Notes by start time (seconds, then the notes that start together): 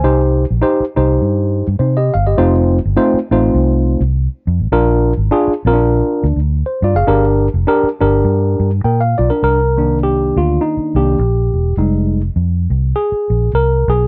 Already playing: G#5
0.04 C2 D#4 G4 C5
0.51 A#1
0.61 D#4 G4 C5
0.80 muted fingered electric bass stroke
0.96 C2 D#4 G4 C5
1.22 G2
1.68 G2
1.79 C3 D#4 C5
1.97 G4 D#5
2.14 G1 F5
2.27 G4 D#5
2.37 F1 A3 C4 D#4 F4 C5
2.85 G1
2.96 A3 C4 D#4 F4 C5
3.14 muted fingered electric bass stroke
3.31 A1 A3 C4 D#4 F4 C5
3.54 C2
4.00 C2
4.47 F2
4.60 A1
4.72 A#1 D4 F4 A#4
5.17 G#1
5.31 D4 F4 G#4
5.48 muted fingered electric bass stroke
5.65 A#1 C4 F4 A#4
5.73 D4
6.23 D2
6.36 D2
6.66 C5
6.82 G2 F4 D5
6.95 F#1 G#4 F5
7.07 G1 D4 G4 A#4
7.54 F1
7.67 D4 G4 A#4
7.83 muted fingered electric bass stroke
8.00 G1 D4 G4 A#4
8.25 G2
8.60 G2
8.84 A#2 A#4 G5
9.01 F5
9.18 B1 F4 D5
9.30 D4 A#4
9.43 C2 A#4
9.77 D#3 A#3 D4
10.03 G4
10.36 D2 F4
10.61 D#4
10.77 muted fingered electric bass stroke
10.95 C2 D#3 A#3 D4 G4
11.19 A#1
11.53 E1
11.77 F1 G3 G#3 D#4
12.36 F2
12.70 C2
12.96 G#4
13.12 muted fingered electric bass stroke
13.30 A#1
13.53 C2 A#4
13.88 B1 G#4